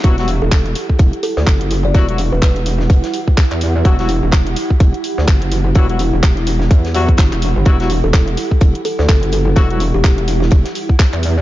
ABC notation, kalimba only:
X:1
M:4/4
L:1/16
Q:"Swing 16ths" 1/4=126
K:Em
V:1 name="Kalimba"
z3 A z6 A A z3 d | z3 B z12 | z16 | z16 |
z3 A z6 A A A z A A | z3 G G z8 z3 |]